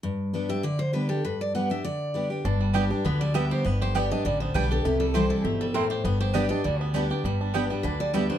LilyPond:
<<
  \new Staff \with { instrumentName = "Steel-string acoustic guitar" } { \time 4/4 \key g \major \tempo 4 = 200 r4. e''8 d''8 c''8 b'8 a'8 | b'8 d''8 fis''8 e''8 d''4. r8 | r2 b'8 d''8 e''8 c''8 | b'8 c''8 d''8 ees''8 d''8 c''8 b'8 a'8 |
g'8 a'8 c''8 a'8 g'8 a'8 bes'8 c''8 | b'8 c''8 d''8 ees''8 d''8 b'8 r4 | r2 b'8 d''8 e''8 c''8 | }
  \new Staff \with { instrumentName = "Mandolin" } { \time 4/4 \key g \major r1 | r1 | r4 <b g' d'' g''>8 r4. <b g' d'' g''>8 r8 | r4 <b g' d'' g''>8 r4. <b g' d'' g''>8 r8 |
r4 <c' e' c'' g''>8 r4. <c' e' c'' g''>8 r8 | r4 <b g' d'' g''>8 r4. <b g' d'' g''>8 r8 | r4 <b g' d'' g''>8 r4. <b g' d'' g''>8 r8 | }
  \new Staff \with { instrumentName = "Steel-string acoustic guitar" } { \time 4/4 \key g \major << { r4 <g b d' g'>8 <d' g'>8 r4 <g b d' g'>8 <d' g'>8 | r4 <g b d' g'>8 <d' g'>8 r4 <g b d' g'>8 <d' g'>8 | r4 <g b d' g'>8 <d' g'>8 r4 <g b d' g'>4 | r4 <g b d' g'>8 <d' g'>8 r4 <g b d' g'>8 <d' g'>8 |
r4 <e g c' e'>4 r2 | r4 <g b d' g'>8 <d' g'>8 r4 <g b d' g'>8 <d' g'>8 | r4 <g b d' g'>8 <d' g'>8 r4 <g b d' g'>8 <d' g'>8 | } \\ { g,2 d2 | g,2 d2 | g,2 d2 | g,2 d2 |
c2 b,4 a,4 | g,2 d2 | g,2 d2 | } >> }
  \new Staff \with { instrumentName = "Five-string banjo" } { \time 4/4 \key g \major r1 | r1 | d'8 g8 g'8 d'8 b8 g8 b8 g'8 | b8 g'8 b8 d'8 g8 b8 d'8 g'8 |
e'8 g8 g'8 e'8 c'8 g8 c'8 g'8 | b8 g'8 b8 d'8 g8 b8 d'8 g'8 | g8 d'8 b8 g8 d'8 g8 b8 g8 | }
  \new Staff \with { instrumentName = "Upright bass" } { \clef bass \time 4/4 \key g \major r1 | r1 | g,,2 d,2 | g,,2 a,,4 b,,4 |
c,2 g,,2 | g,,2 d,2 | g,,2 d,2 | }
>>